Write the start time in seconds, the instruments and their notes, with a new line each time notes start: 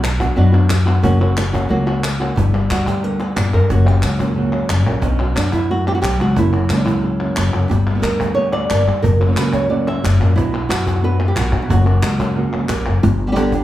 Already playing: upright bass B1
0.03 muted nylon-string guitar stroke, cajon slap, clap
0.20 nylon-string guitar B3 D4 F#4, cajon bass, clap
0.36 upright bass F#2, nylon-string guitar B2 F#3 B3 D4 F#4
0.52 nylon-string guitar B3 D4 F#4, clap
0.69 muted nylon-string guitar stroke, cajon bass, cajon slap, clap
0.85 nylon-string guitar B3 D4 F#4, clap
1.02 upright bass F#1, nylon-string guitar C#3 F#3 A#3 C#4 F#4, cajon bass
1.20 nylon-string guitar A#3 C#4 F#4, cajon slap
1.37 muted nylon-string guitar stroke, cajon slap, clap
1.53 nylon-string guitar A#3 C#4 F#4, cajon bass, clap
1.69 upright bass C#2, nylon-string guitar C#3 F#3 A#3 C#4 F#4
1.86 nylon-string guitar A#3 C#4 F#4, clap
2.03 muted nylon-string guitar stroke, cajon slap, clap
2.20 nylon-string guitar A#3 C#4 F#4, cajon slap, clap
2.35 upright bass G1, nylon-string guitar G2 B2 D3 G3 B3 E4 G4, cajon bass
2.52 nylon-string guitar G3 B3 G4
2.70 upright bass D2, nylon-string guitar F#4, muted nylon-string guitar stroke, cajon slap, clap
2.86 nylon-string guitar G3 B3 G4, cajon bass, clap
3.03 nylon-string guitar B2 D3 G3 B3 G4 A#4
3.19 nylon-string guitar G3 B3 G4 B4, clap
3.36 upright bass G1, nylon-string guitar A#2, muted nylon-string guitar stroke, cajon slap, clap
3.53 upright bass G2, nylon-string guitar G2 G3 B3 G4 A#4, clap
3.69 upright bass F#1, nylon-string guitar F#2 C#3 F#3 A#3 C#4 F#4, cajon bass, cajon slap
3.86 nylon-string guitar F#3 A#3 C#4 F#4 G4
4.02 upright bass C#2, nylon-string guitar F#4, muted nylon-string guitar stroke, cajon slap, clap
4.19 nylon-string guitar A#3 C#4 F#4, cajon bass, clap
4.35 nylon-string guitar C#3 F#3 A#3 C#4 F#4
4.52 nylon-string guitar A#3 C#4 F#4, clap
4.69 upright bass F#1, nylon-string guitar G2, muted nylon-string guitar stroke, cajon slap, clap
4.86 upright bass A#1, nylon-string guitar A#2 A#3 C#4 F#4, clap
5.02 upright bass B1, nylon-string guitar B2 F#3 B3 C#4 D4 F#4, cajon bass, cajon slap
5.19 nylon-string guitar F#3 B3 D4 F#4, clap
5.36 upright bass F#2, nylon-string guitar F#3 B3 D4 F#4, cajon slap, clap
5.52 nylon-string guitar E4, cajon bass, clap
5.70 nylon-string guitar F#2 F#4, muted nylon-string guitar stroke
5.86 nylon-string guitar B3 D4 F#4 G4, clap
5.95 nylon-string guitar F#4
6.02 upright bass B1, nylon-string guitar F#3 G4, cajon slap, clap
6.20 upright bass C#2, nylon-string guitar B3 D4 F#4, clap
6.36 upright bass F#1, nylon-string guitar F#2 C#3 F#3 A#3 C#4 E4 F#4, cajon bass
6.53 nylon-string guitar F#3 A#3 C#4 F#4, clap
6.69 upright bass C#2, nylon-string guitar F#3 A#3 C#4 E4 F#4, cajon slap, clap
6.77 nylon-string guitar D4
6.85 nylon-string guitar E4, cajon bass, clap
7.02 nylon-string guitar C#3, muted nylon-string guitar stroke
7.20 nylon-string guitar A#3 C#4 F#4, clap
7.36 upright bass F#1, cajon bass, cajon slap, clap
7.53 upright bass F#1, nylon-string guitar F#2 A#3 C#4 F#4, clap
7.69 upright bass G1, nylon-string guitar G3 G4, muted nylon-string guitar stroke, cajon bass, cajon slap
7.86 nylon-string guitar D3 G3 B3 G4, clap
7.91 nylon-string guitar D3 G3 B3 G4
7.95 nylon-string guitar D3 G3 B3 G4
7.99 upright bass D2, nylon-string guitar G3 B3 G4 A#4, cajon slap
8.03 nylon-string guitar B2 D3 G3 B3 G4, clap
8.20 nylon-string guitar B4, cajon bass, clap
8.35 nylon-string guitar B2 D3 G3 B3 G4 C#5
8.53 nylon-string guitar D5, clap
8.70 upright bass G1, nylon-string guitar A#3, muted nylon-string guitar stroke, cajon slap, clap
8.86 upright bass G2, nylon-string guitar G3 B3 G4, cajon slap, clap
9.02 upright bass F#1, nylon-string guitar F#2 A#4, muted nylon-string guitar stroke, cajon bass
9.20 nylon-string guitar A#3 C#4 F#4
9.28 nylon-string guitar F#3 A#3 C#4 F#4
9.32 nylon-string guitar F#3 A#3 C#4 F#4
9.37 upright bass C#2, nylon-string guitar C#3 F#3 A#3 C#4 F#4 B4, cajon slap, clap
9.53 nylon-string guitar C#5, cajon bass, clap
9.69 nylon-string guitar F#2 C#3 F#3 A#3 C#4 F#4 D5
9.88 nylon-string guitar E5, clap
10.03 upright bass F#1, nylon-string guitar G2, muted nylon-string guitar stroke, cajon bass, cajon slap, clap
10.19 upright bass F#2, nylon-string guitar A#2 A#3 C#4 F#4, cajon slap, clap
10.36 upright bass B1, nylon-string guitar B2 F#3 B3 D4 E4 F#4, cajon bass, cajon slap
10.52 nylon-string guitar B3 D4 F#4, cajon slap, clap
10.69 upright bass F#2, nylon-string guitar F#4, muted nylon-string guitar stroke, cajon slap, clap
10.85 nylon-string guitar B3 D4 F#4 G4, cajon bass, clap
11.01 nylon-string guitar F#2 B2 F#3 B3 D4 F#4 B4
11.19 nylon-string guitar B3 D4 F#4, clap
11.28 nylon-string guitar G4
11.35 upright bass B1, nylon-string guitar A#2 F#4, muted nylon-string guitar stroke, cajon bass, cajon slap, clap
11.51 nylon-string guitar G2 B3 D4 F#4, upright bass B2, clap
11.62 nylon-string guitar E4
11.68 upright bass F#1, nylon-string guitar F#2 C#3 F#3 A#3 C#4 F#4, cajon bass
11.84 nylon-string guitar A#3 C#4 F#4, clap
12.02 upright bass C#2, muted nylon-string guitar stroke, cajon slap, clap
12.18 nylon-string guitar A#3 C#4 F#4, cajon bass, clap
12.35 nylon-string guitar F#2 C#3 F#3 A#3 C#4 F#4
12.52 upright bass C#2, nylon-string guitar A#3 C#4 F#4, clap
12.68 upright bass A#1, nylon-string guitar A#3, muted nylon-string guitar stroke, cajon bass, cajon slap, clap
12.86 upright bass F#1, nylon-string guitar A#3 C#4 F#4, cajon slap, clap
13.03 upright bass G1, muted nylon-string guitar stroke, cajon bass
13.27 nylon-string guitar G3 B3 D4 G4
13.32 nylon-string guitar D3 G3 B3 D4 G4
13.36 nylon-string guitar G3 B3 D4 G4, cajon slap
13.52 nylon-string guitar B3 D4 G4, cajon bass